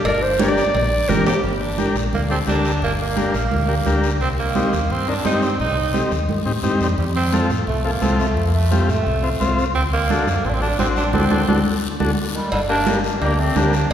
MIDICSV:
0, 0, Header, 1, 6, 480
1, 0, Start_track
1, 0, Key_signature, -2, "minor"
1, 0, Tempo, 346420
1, 71, Time_signature, 4, 2, 24, 8
1, 19304, End_track
2, 0, Start_track
2, 0, Title_t, "Transistor combo organ"
2, 0, Program_c, 0, 18
2, 548, Note_on_c, 0, 62, 77
2, 558, Note_on_c, 0, 67, 72
2, 564, Note_on_c, 0, 70, 88
2, 885, Note_off_c, 0, 62, 0
2, 889, Note_off_c, 0, 67, 0
2, 892, Note_off_c, 0, 70, 0
2, 1509, Note_on_c, 0, 62, 76
2, 1516, Note_on_c, 0, 67, 67
2, 1521, Note_on_c, 0, 70, 83
2, 1845, Note_off_c, 0, 62, 0
2, 1849, Note_off_c, 0, 67, 0
2, 1851, Note_off_c, 0, 70, 0
2, 2468, Note_on_c, 0, 62, 68
2, 2473, Note_on_c, 0, 67, 63
2, 2480, Note_on_c, 0, 70, 77
2, 2721, Note_off_c, 0, 62, 0
2, 2723, Note_off_c, 0, 67, 0
2, 2727, Note_off_c, 0, 70, 0
2, 3185, Note_on_c, 0, 62, 56
2, 3192, Note_on_c, 0, 67, 53
2, 3194, Note_on_c, 0, 69, 66
2, 3271, Note_off_c, 0, 62, 0
2, 3275, Note_off_c, 0, 67, 0
2, 3276, Note_off_c, 0, 69, 0
2, 3420, Note_on_c, 0, 62, 69
2, 3425, Note_on_c, 0, 67, 64
2, 3434, Note_on_c, 0, 70, 71
2, 3761, Note_off_c, 0, 62, 0
2, 3764, Note_off_c, 0, 67, 0
2, 3768, Note_off_c, 0, 70, 0
2, 4377, Note_on_c, 0, 62, 70
2, 4386, Note_on_c, 0, 67, 65
2, 4391, Note_on_c, 0, 70, 77
2, 4636, Note_off_c, 0, 62, 0
2, 4641, Note_off_c, 0, 67, 0
2, 4643, Note_off_c, 0, 70, 0
2, 5096, Note_on_c, 0, 62, 58
2, 5107, Note_on_c, 0, 67, 52
2, 5111, Note_on_c, 0, 70, 64
2, 5188, Note_off_c, 0, 62, 0
2, 5193, Note_off_c, 0, 67, 0
2, 5196, Note_off_c, 0, 70, 0
2, 5341, Note_on_c, 0, 62, 81
2, 5350, Note_on_c, 0, 67, 74
2, 5359, Note_on_c, 0, 70, 87
2, 5683, Note_off_c, 0, 62, 0
2, 5687, Note_off_c, 0, 67, 0
2, 5692, Note_off_c, 0, 70, 0
2, 6309, Note_on_c, 0, 60, 69
2, 6312, Note_on_c, 0, 63, 63
2, 6316, Note_on_c, 0, 67, 80
2, 6563, Note_off_c, 0, 60, 0
2, 6565, Note_off_c, 0, 63, 0
2, 6567, Note_off_c, 0, 67, 0
2, 7026, Note_on_c, 0, 60, 59
2, 7035, Note_on_c, 0, 63, 54
2, 7040, Note_on_c, 0, 70, 65
2, 7114, Note_off_c, 0, 60, 0
2, 7119, Note_off_c, 0, 63, 0
2, 7121, Note_off_c, 0, 70, 0
2, 7267, Note_on_c, 0, 60, 69
2, 7268, Note_on_c, 0, 63, 59
2, 7273, Note_on_c, 0, 67, 77
2, 7606, Note_off_c, 0, 60, 0
2, 7607, Note_off_c, 0, 63, 0
2, 7610, Note_off_c, 0, 67, 0
2, 8219, Note_on_c, 0, 60, 69
2, 8225, Note_on_c, 0, 63, 63
2, 8230, Note_on_c, 0, 67, 75
2, 8479, Note_off_c, 0, 60, 0
2, 8482, Note_off_c, 0, 63, 0
2, 8484, Note_off_c, 0, 67, 0
2, 8946, Note_on_c, 0, 60, 67
2, 8951, Note_on_c, 0, 63, 62
2, 8959, Note_on_c, 0, 67, 75
2, 9034, Note_off_c, 0, 60, 0
2, 9037, Note_off_c, 0, 63, 0
2, 9041, Note_off_c, 0, 67, 0
2, 9185, Note_on_c, 0, 60, 78
2, 9191, Note_on_c, 0, 63, 74
2, 9195, Note_on_c, 0, 67, 86
2, 9526, Note_off_c, 0, 60, 0
2, 9529, Note_off_c, 0, 63, 0
2, 9531, Note_off_c, 0, 67, 0
2, 10149, Note_on_c, 0, 60, 72
2, 10158, Note_on_c, 0, 65, 63
2, 10164, Note_on_c, 0, 69, 80
2, 10404, Note_off_c, 0, 60, 0
2, 10409, Note_off_c, 0, 65, 0
2, 10411, Note_off_c, 0, 69, 0
2, 10865, Note_on_c, 0, 60, 58
2, 10876, Note_on_c, 0, 65, 53
2, 10879, Note_on_c, 0, 69, 64
2, 10954, Note_off_c, 0, 60, 0
2, 10959, Note_off_c, 0, 65, 0
2, 10961, Note_off_c, 0, 69, 0
2, 11102, Note_on_c, 0, 60, 71
2, 11107, Note_on_c, 0, 65, 60
2, 11112, Note_on_c, 0, 69, 73
2, 11445, Note_off_c, 0, 60, 0
2, 11447, Note_off_c, 0, 65, 0
2, 11450, Note_off_c, 0, 69, 0
2, 12067, Note_on_c, 0, 60, 66
2, 12073, Note_on_c, 0, 65, 63
2, 12076, Note_on_c, 0, 67, 76
2, 12323, Note_off_c, 0, 60, 0
2, 12326, Note_off_c, 0, 65, 0
2, 12327, Note_off_c, 0, 67, 0
2, 12788, Note_on_c, 0, 60, 55
2, 12794, Note_on_c, 0, 65, 51
2, 12800, Note_on_c, 0, 72, 64
2, 12875, Note_off_c, 0, 60, 0
2, 12878, Note_off_c, 0, 65, 0
2, 12881, Note_off_c, 0, 72, 0
2, 13029, Note_on_c, 0, 60, 84
2, 13038, Note_on_c, 0, 65, 75
2, 13041, Note_on_c, 0, 72, 87
2, 13368, Note_off_c, 0, 60, 0
2, 13372, Note_off_c, 0, 65, 0
2, 13374, Note_off_c, 0, 72, 0
2, 13993, Note_on_c, 0, 62, 74
2, 13999, Note_on_c, 0, 66, 64
2, 14000, Note_on_c, 0, 69, 80
2, 14246, Note_off_c, 0, 62, 0
2, 14249, Note_off_c, 0, 66, 0
2, 14249, Note_off_c, 0, 69, 0
2, 14705, Note_on_c, 0, 62, 57
2, 14710, Note_on_c, 0, 66, 57
2, 14717, Note_on_c, 0, 69, 61
2, 14794, Note_off_c, 0, 62, 0
2, 14796, Note_off_c, 0, 66, 0
2, 14800, Note_off_c, 0, 69, 0
2, 14944, Note_on_c, 0, 62, 71
2, 14947, Note_on_c, 0, 66, 62
2, 14954, Note_on_c, 0, 72, 74
2, 15285, Note_off_c, 0, 62, 0
2, 15287, Note_off_c, 0, 66, 0
2, 15290, Note_off_c, 0, 72, 0
2, 15431, Note_on_c, 0, 66, 86
2, 15431, Note_on_c, 0, 69, 86
2, 15432, Note_on_c, 0, 62, 86
2, 15586, Note_off_c, 0, 66, 0
2, 15586, Note_off_c, 0, 69, 0
2, 15587, Note_off_c, 0, 62, 0
2, 15666, Note_on_c, 0, 69, 89
2, 15667, Note_on_c, 0, 62, 90
2, 15667, Note_on_c, 0, 66, 92
2, 15823, Note_off_c, 0, 62, 0
2, 15823, Note_off_c, 0, 66, 0
2, 15823, Note_off_c, 0, 69, 0
2, 15911, Note_on_c, 0, 62, 95
2, 15911, Note_on_c, 0, 69, 90
2, 15913, Note_on_c, 0, 66, 88
2, 16065, Note_off_c, 0, 69, 0
2, 16066, Note_off_c, 0, 62, 0
2, 16067, Note_off_c, 0, 66, 0
2, 16628, Note_on_c, 0, 66, 81
2, 16629, Note_on_c, 0, 62, 86
2, 16631, Note_on_c, 0, 69, 81
2, 16783, Note_off_c, 0, 66, 0
2, 16784, Note_off_c, 0, 62, 0
2, 16785, Note_off_c, 0, 69, 0
2, 17583, Note_on_c, 0, 62, 64
2, 17590, Note_on_c, 0, 67, 59
2, 17593, Note_on_c, 0, 70, 76
2, 17671, Note_off_c, 0, 62, 0
2, 17675, Note_off_c, 0, 67, 0
2, 17677, Note_off_c, 0, 70, 0
2, 17827, Note_on_c, 0, 62, 77
2, 17829, Note_on_c, 0, 67, 69
2, 17835, Note_on_c, 0, 70, 84
2, 17997, Note_off_c, 0, 62, 0
2, 17998, Note_off_c, 0, 67, 0
2, 18001, Note_off_c, 0, 70, 0
2, 18308, Note_on_c, 0, 62, 67
2, 18312, Note_on_c, 0, 67, 58
2, 18319, Note_on_c, 0, 70, 77
2, 18477, Note_off_c, 0, 62, 0
2, 18479, Note_off_c, 0, 67, 0
2, 18483, Note_off_c, 0, 70, 0
2, 18788, Note_on_c, 0, 62, 69
2, 18793, Note_on_c, 0, 67, 68
2, 18797, Note_on_c, 0, 70, 78
2, 19040, Note_off_c, 0, 62, 0
2, 19043, Note_off_c, 0, 67, 0
2, 19045, Note_off_c, 0, 70, 0
2, 19304, End_track
3, 0, Start_track
3, 0, Title_t, "Clarinet"
3, 0, Program_c, 1, 71
3, 76, Note_on_c, 1, 70, 90
3, 305, Note_on_c, 1, 72, 85
3, 326, Note_off_c, 1, 70, 0
3, 540, Note_off_c, 1, 72, 0
3, 556, Note_on_c, 1, 74, 95
3, 1506, Note_on_c, 1, 70, 91
3, 1527, Note_off_c, 1, 74, 0
3, 1740, Note_off_c, 1, 70, 0
3, 1747, Note_on_c, 1, 67, 88
3, 1980, Note_off_c, 1, 67, 0
3, 17103, Note_on_c, 1, 55, 67
3, 17330, Note_off_c, 1, 55, 0
3, 17344, Note_on_c, 1, 55, 77
3, 17454, Note_off_c, 1, 55, 0
3, 17586, Note_on_c, 1, 62, 98
3, 18035, Note_off_c, 1, 62, 0
3, 18310, Note_on_c, 1, 58, 80
3, 18561, Note_on_c, 1, 60, 85
3, 18582, Note_off_c, 1, 58, 0
3, 18791, Note_on_c, 1, 62, 91
3, 18812, Note_off_c, 1, 60, 0
3, 19293, Note_off_c, 1, 62, 0
3, 19304, End_track
4, 0, Start_track
4, 0, Title_t, "Tenor saxophone"
4, 0, Program_c, 2, 66
4, 1753, Note_on_c, 2, 55, 76
4, 1860, Note_off_c, 2, 55, 0
4, 2000, Note_on_c, 2, 55, 80
4, 2233, Note_on_c, 2, 62, 90
4, 2254, Note_off_c, 2, 55, 0
4, 2711, Note_off_c, 2, 62, 0
4, 2970, Note_on_c, 2, 58, 83
4, 3074, Note_off_c, 2, 58, 0
4, 3205, Note_on_c, 2, 60, 79
4, 3309, Note_off_c, 2, 60, 0
4, 3445, Note_on_c, 2, 62, 89
4, 3885, Note_off_c, 2, 62, 0
4, 3933, Note_on_c, 2, 58, 89
4, 4036, Note_off_c, 2, 58, 0
4, 4174, Note_on_c, 2, 58, 84
4, 4610, Note_off_c, 2, 58, 0
4, 4642, Note_on_c, 2, 58, 90
4, 5542, Note_off_c, 2, 58, 0
4, 5832, Note_on_c, 2, 60, 98
4, 5940, Note_off_c, 2, 60, 0
4, 6088, Note_on_c, 2, 58, 93
4, 6811, Note_on_c, 2, 60, 93
4, 6831, Note_off_c, 2, 58, 0
4, 7052, Note_on_c, 2, 62, 91
4, 7073, Note_off_c, 2, 60, 0
4, 7283, Note_off_c, 2, 62, 0
4, 7290, Note_on_c, 2, 63, 95
4, 7523, Note_on_c, 2, 60, 86
4, 7544, Note_off_c, 2, 63, 0
4, 7753, Note_off_c, 2, 60, 0
4, 7761, Note_on_c, 2, 63, 95
4, 8428, Note_off_c, 2, 63, 0
4, 9448, Note_on_c, 2, 55, 71
4, 9665, Note_off_c, 2, 55, 0
4, 9683, Note_on_c, 2, 55, 78
4, 9789, Note_off_c, 2, 55, 0
4, 9923, Note_on_c, 2, 60, 87
4, 10366, Note_off_c, 2, 60, 0
4, 10637, Note_on_c, 2, 57, 80
4, 10877, Note_on_c, 2, 58, 77
4, 10898, Note_off_c, 2, 57, 0
4, 11116, Note_on_c, 2, 60, 86
4, 11137, Note_off_c, 2, 58, 0
4, 11357, Note_on_c, 2, 57, 81
4, 11378, Note_off_c, 2, 60, 0
4, 11728, Note_off_c, 2, 57, 0
4, 11737, Note_on_c, 2, 58, 59
4, 11837, Note_on_c, 2, 57, 86
4, 11857, Note_off_c, 2, 58, 0
4, 12307, Note_off_c, 2, 57, 0
4, 12316, Note_on_c, 2, 57, 93
4, 13220, Note_off_c, 2, 57, 0
4, 13506, Note_on_c, 2, 60, 101
4, 13616, Note_off_c, 2, 60, 0
4, 13761, Note_on_c, 2, 58, 92
4, 14483, Note_on_c, 2, 60, 96
4, 14504, Note_off_c, 2, 58, 0
4, 14541, Note_on_c, 2, 62, 83
4, 14562, Note_off_c, 2, 60, 0
4, 14601, Note_on_c, 2, 60, 92
4, 14622, Note_off_c, 2, 62, 0
4, 14709, Note_off_c, 2, 60, 0
4, 14718, Note_on_c, 2, 62, 90
4, 14939, Note_off_c, 2, 62, 0
4, 14955, Note_on_c, 2, 60, 88
4, 15063, Note_off_c, 2, 60, 0
4, 15202, Note_on_c, 2, 62, 86
4, 15421, Note_off_c, 2, 62, 0
4, 15435, Note_on_c, 2, 60, 93
4, 16104, Note_off_c, 2, 60, 0
4, 17102, Note_on_c, 2, 51, 61
4, 17330, Note_off_c, 2, 51, 0
4, 17352, Note_on_c, 2, 50, 69
4, 17460, Note_off_c, 2, 50, 0
4, 17586, Note_on_c, 2, 58, 85
4, 18034, Note_off_c, 2, 58, 0
4, 18314, Note_on_c, 2, 55, 69
4, 18542, Note_on_c, 2, 57, 73
4, 18563, Note_off_c, 2, 55, 0
4, 18797, Note_on_c, 2, 58, 83
4, 18818, Note_off_c, 2, 57, 0
4, 19296, Note_off_c, 2, 58, 0
4, 19304, End_track
5, 0, Start_track
5, 0, Title_t, "Fingered electric bass"
5, 0, Program_c, 3, 33
5, 71, Note_on_c, 3, 31, 109
5, 838, Note_off_c, 3, 31, 0
5, 1030, Note_on_c, 3, 34, 97
5, 1413, Note_off_c, 3, 34, 0
5, 1511, Note_on_c, 3, 31, 91
5, 1702, Note_off_c, 3, 31, 0
5, 1992, Note_on_c, 3, 31, 87
5, 2567, Note_off_c, 3, 31, 0
5, 2706, Note_on_c, 3, 34, 79
5, 2900, Note_off_c, 3, 34, 0
5, 2950, Note_on_c, 3, 38, 78
5, 3334, Note_off_c, 3, 38, 0
5, 3435, Note_on_c, 3, 38, 76
5, 3910, Note_on_c, 3, 31, 88
5, 3931, Note_off_c, 3, 38, 0
5, 4487, Note_off_c, 3, 31, 0
5, 4634, Note_on_c, 3, 34, 81
5, 4825, Note_off_c, 3, 34, 0
5, 4871, Note_on_c, 3, 38, 85
5, 5256, Note_off_c, 3, 38, 0
5, 5353, Note_on_c, 3, 38, 79
5, 5831, Note_off_c, 3, 38, 0
5, 5831, Note_on_c, 3, 36, 85
5, 6408, Note_off_c, 3, 36, 0
5, 6555, Note_on_c, 3, 39, 81
5, 6746, Note_off_c, 3, 39, 0
5, 6796, Note_on_c, 3, 43, 81
5, 7179, Note_off_c, 3, 43, 0
5, 7277, Note_on_c, 3, 43, 79
5, 7755, Note_on_c, 3, 36, 84
5, 7776, Note_off_c, 3, 43, 0
5, 8331, Note_off_c, 3, 36, 0
5, 8471, Note_on_c, 3, 39, 76
5, 8665, Note_off_c, 3, 39, 0
5, 8711, Note_on_c, 3, 43, 76
5, 8905, Note_off_c, 3, 43, 0
5, 8949, Note_on_c, 3, 45, 75
5, 9168, Note_off_c, 3, 45, 0
5, 9189, Note_on_c, 3, 43, 73
5, 9408, Note_off_c, 3, 43, 0
5, 9430, Note_on_c, 3, 41, 73
5, 9660, Note_off_c, 3, 41, 0
5, 9666, Note_on_c, 3, 41, 85
5, 10246, Note_off_c, 3, 41, 0
5, 10389, Note_on_c, 3, 45, 75
5, 10583, Note_off_c, 3, 45, 0
5, 10629, Note_on_c, 3, 36, 79
5, 11016, Note_off_c, 3, 36, 0
5, 11112, Note_on_c, 3, 36, 78
5, 11596, Note_off_c, 3, 36, 0
5, 11596, Note_on_c, 3, 41, 89
5, 12171, Note_off_c, 3, 41, 0
5, 12314, Note_on_c, 3, 45, 81
5, 12506, Note_off_c, 3, 45, 0
5, 12558, Note_on_c, 3, 36, 84
5, 12940, Note_off_c, 3, 36, 0
5, 13041, Note_on_c, 3, 36, 78
5, 13512, Note_off_c, 3, 36, 0
5, 13512, Note_on_c, 3, 38, 83
5, 14089, Note_off_c, 3, 38, 0
5, 14230, Note_on_c, 3, 42, 81
5, 14424, Note_off_c, 3, 42, 0
5, 14471, Note_on_c, 3, 33, 87
5, 14857, Note_off_c, 3, 33, 0
5, 14947, Note_on_c, 3, 33, 77
5, 15421, Note_off_c, 3, 33, 0
5, 15429, Note_on_c, 3, 38, 85
5, 15610, Note_off_c, 3, 38, 0
5, 15671, Note_on_c, 3, 38, 84
5, 15851, Note_off_c, 3, 38, 0
5, 15916, Note_on_c, 3, 38, 83
5, 16093, Note_off_c, 3, 38, 0
5, 16630, Note_on_c, 3, 38, 83
5, 16810, Note_off_c, 3, 38, 0
5, 17349, Note_on_c, 3, 31, 99
5, 18117, Note_off_c, 3, 31, 0
5, 18308, Note_on_c, 3, 38, 86
5, 18692, Note_off_c, 3, 38, 0
5, 18793, Note_on_c, 3, 38, 91
5, 19175, Note_off_c, 3, 38, 0
5, 19304, End_track
6, 0, Start_track
6, 0, Title_t, "Drums"
6, 69, Note_on_c, 9, 56, 110
6, 69, Note_on_c, 9, 63, 35
6, 74, Note_on_c, 9, 74, 75
6, 207, Note_off_c, 9, 56, 0
6, 207, Note_off_c, 9, 63, 0
6, 212, Note_off_c, 9, 74, 0
6, 546, Note_on_c, 9, 63, 100
6, 550, Note_on_c, 9, 65, 67
6, 556, Note_on_c, 9, 73, 70
6, 685, Note_off_c, 9, 63, 0
6, 689, Note_off_c, 9, 65, 0
6, 695, Note_off_c, 9, 73, 0
6, 796, Note_on_c, 9, 73, 72
6, 934, Note_off_c, 9, 73, 0
6, 1029, Note_on_c, 9, 63, 37
6, 1033, Note_on_c, 9, 56, 83
6, 1033, Note_on_c, 9, 74, 77
6, 1167, Note_off_c, 9, 63, 0
6, 1172, Note_off_c, 9, 56, 0
6, 1172, Note_off_c, 9, 74, 0
6, 1511, Note_on_c, 9, 73, 70
6, 1513, Note_on_c, 9, 63, 87
6, 1513, Note_on_c, 9, 64, 88
6, 1649, Note_off_c, 9, 73, 0
6, 1652, Note_off_c, 9, 63, 0
6, 1652, Note_off_c, 9, 64, 0
6, 1752, Note_on_c, 9, 73, 72
6, 1753, Note_on_c, 9, 66, 78
6, 1891, Note_off_c, 9, 73, 0
6, 1892, Note_off_c, 9, 66, 0
6, 1990, Note_on_c, 9, 74, 67
6, 2129, Note_off_c, 9, 74, 0
6, 2467, Note_on_c, 9, 63, 73
6, 2472, Note_on_c, 9, 73, 61
6, 2605, Note_off_c, 9, 63, 0
6, 2611, Note_off_c, 9, 73, 0
6, 2711, Note_on_c, 9, 73, 62
6, 2850, Note_off_c, 9, 73, 0
6, 2948, Note_on_c, 9, 74, 65
6, 2950, Note_on_c, 9, 63, 63
6, 3087, Note_off_c, 9, 74, 0
6, 3089, Note_off_c, 9, 63, 0
6, 3430, Note_on_c, 9, 63, 76
6, 3430, Note_on_c, 9, 73, 64
6, 3568, Note_off_c, 9, 63, 0
6, 3569, Note_off_c, 9, 73, 0
6, 3672, Note_on_c, 9, 73, 64
6, 3810, Note_off_c, 9, 73, 0
6, 3909, Note_on_c, 9, 74, 66
6, 4047, Note_off_c, 9, 74, 0
6, 4388, Note_on_c, 9, 63, 76
6, 4393, Note_on_c, 9, 73, 61
6, 4527, Note_off_c, 9, 63, 0
6, 4531, Note_off_c, 9, 73, 0
6, 4632, Note_on_c, 9, 73, 62
6, 4770, Note_off_c, 9, 73, 0
6, 4868, Note_on_c, 9, 63, 67
6, 4872, Note_on_c, 9, 74, 67
6, 5007, Note_off_c, 9, 63, 0
6, 5010, Note_off_c, 9, 74, 0
6, 5350, Note_on_c, 9, 63, 78
6, 5351, Note_on_c, 9, 73, 59
6, 5488, Note_off_c, 9, 63, 0
6, 5490, Note_off_c, 9, 73, 0
6, 5592, Note_on_c, 9, 73, 65
6, 5730, Note_off_c, 9, 73, 0
6, 5830, Note_on_c, 9, 74, 64
6, 5968, Note_off_c, 9, 74, 0
6, 6308, Note_on_c, 9, 63, 78
6, 6315, Note_on_c, 9, 73, 66
6, 6447, Note_off_c, 9, 63, 0
6, 6454, Note_off_c, 9, 73, 0
6, 6554, Note_on_c, 9, 73, 67
6, 6693, Note_off_c, 9, 73, 0
6, 6792, Note_on_c, 9, 74, 69
6, 6931, Note_off_c, 9, 74, 0
6, 7274, Note_on_c, 9, 73, 64
6, 7275, Note_on_c, 9, 63, 78
6, 7412, Note_off_c, 9, 73, 0
6, 7414, Note_off_c, 9, 63, 0
6, 7518, Note_on_c, 9, 73, 66
6, 7656, Note_off_c, 9, 73, 0
6, 7757, Note_on_c, 9, 74, 66
6, 7895, Note_off_c, 9, 74, 0
6, 8236, Note_on_c, 9, 63, 78
6, 8237, Note_on_c, 9, 73, 63
6, 8374, Note_off_c, 9, 63, 0
6, 8375, Note_off_c, 9, 73, 0
6, 8474, Note_on_c, 9, 73, 65
6, 8612, Note_off_c, 9, 73, 0
6, 8713, Note_on_c, 9, 74, 64
6, 8716, Note_on_c, 9, 63, 66
6, 8851, Note_off_c, 9, 74, 0
6, 8854, Note_off_c, 9, 63, 0
6, 9190, Note_on_c, 9, 73, 64
6, 9199, Note_on_c, 9, 63, 79
6, 9328, Note_off_c, 9, 73, 0
6, 9337, Note_off_c, 9, 63, 0
6, 9434, Note_on_c, 9, 73, 65
6, 9572, Note_off_c, 9, 73, 0
6, 9670, Note_on_c, 9, 74, 68
6, 9808, Note_off_c, 9, 74, 0
6, 10149, Note_on_c, 9, 73, 63
6, 10154, Note_on_c, 9, 63, 83
6, 10288, Note_off_c, 9, 73, 0
6, 10292, Note_off_c, 9, 63, 0
6, 10393, Note_on_c, 9, 73, 62
6, 10531, Note_off_c, 9, 73, 0
6, 10630, Note_on_c, 9, 74, 68
6, 10768, Note_off_c, 9, 74, 0
6, 11113, Note_on_c, 9, 73, 66
6, 11119, Note_on_c, 9, 63, 79
6, 11252, Note_off_c, 9, 73, 0
6, 11257, Note_off_c, 9, 63, 0
6, 11360, Note_on_c, 9, 73, 63
6, 11498, Note_off_c, 9, 73, 0
6, 11598, Note_on_c, 9, 74, 71
6, 11737, Note_off_c, 9, 74, 0
6, 12080, Note_on_c, 9, 73, 61
6, 12083, Note_on_c, 9, 63, 76
6, 12219, Note_off_c, 9, 73, 0
6, 12222, Note_off_c, 9, 63, 0
6, 12321, Note_on_c, 9, 73, 66
6, 12459, Note_off_c, 9, 73, 0
6, 12563, Note_on_c, 9, 74, 68
6, 12701, Note_off_c, 9, 74, 0
6, 13039, Note_on_c, 9, 63, 76
6, 13042, Note_on_c, 9, 73, 66
6, 13177, Note_off_c, 9, 63, 0
6, 13180, Note_off_c, 9, 73, 0
6, 13283, Note_on_c, 9, 73, 65
6, 13421, Note_off_c, 9, 73, 0
6, 13524, Note_on_c, 9, 74, 69
6, 13662, Note_off_c, 9, 74, 0
6, 13993, Note_on_c, 9, 63, 79
6, 14001, Note_on_c, 9, 73, 66
6, 14131, Note_off_c, 9, 63, 0
6, 14140, Note_off_c, 9, 73, 0
6, 14238, Note_on_c, 9, 73, 67
6, 14377, Note_off_c, 9, 73, 0
6, 14475, Note_on_c, 9, 74, 68
6, 14614, Note_off_c, 9, 74, 0
6, 14951, Note_on_c, 9, 63, 72
6, 14957, Note_on_c, 9, 73, 65
6, 15089, Note_off_c, 9, 63, 0
6, 15095, Note_off_c, 9, 73, 0
6, 15192, Note_on_c, 9, 73, 65
6, 15330, Note_off_c, 9, 73, 0
6, 15424, Note_on_c, 9, 74, 92
6, 15428, Note_on_c, 9, 63, 96
6, 15562, Note_off_c, 9, 74, 0
6, 15567, Note_off_c, 9, 63, 0
6, 15668, Note_on_c, 9, 74, 90
6, 15675, Note_on_c, 9, 63, 93
6, 15806, Note_off_c, 9, 74, 0
6, 15814, Note_off_c, 9, 63, 0
6, 15906, Note_on_c, 9, 74, 92
6, 15913, Note_on_c, 9, 63, 95
6, 16045, Note_off_c, 9, 74, 0
6, 16052, Note_off_c, 9, 63, 0
6, 16628, Note_on_c, 9, 74, 93
6, 16629, Note_on_c, 9, 63, 90
6, 16767, Note_off_c, 9, 74, 0
6, 16768, Note_off_c, 9, 63, 0
6, 17345, Note_on_c, 9, 56, 106
6, 17347, Note_on_c, 9, 74, 70
6, 17355, Note_on_c, 9, 63, 34
6, 17484, Note_off_c, 9, 56, 0
6, 17486, Note_off_c, 9, 74, 0
6, 17493, Note_off_c, 9, 63, 0
6, 17826, Note_on_c, 9, 63, 97
6, 17829, Note_on_c, 9, 73, 71
6, 17965, Note_off_c, 9, 63, 0
6, 17968, Note_off_c, 9, 73, 0
6, 18074, Note_on_c, 9, 73, 70
6, 18213, Note_off_c, 9, 73, 0
6, 18311, Note_on_c, 9, 56, 87
6, 18311, Note_on_c, 9, 74, 71
6, 18312, Note_on_c, 9, 63, 34
6, 18450, Note_off_c, 9, 56, 0
6, 18450, Note_off_c, 9, 74, 0
6, 18451, Note_off_c, 9, 63, 0
6, 18786, Note_on_c, 9, 73, 66
6, 18787, Note_on_c, 9, 66, 67
6, 18790, Note_on_c, 9, 63, 80
6, 18925, Note_off_c, 9, 66, 0
6, 18925, Note_off_c, 9, 73, 0
6, 18929, Note_off_c, 9, 63, 0
6, 19027, Note_on_c, 9, 73, 70
6, 19166, Note_off_c, 9, 73, 0
6, 19304, End_track
0, 0, End_of_file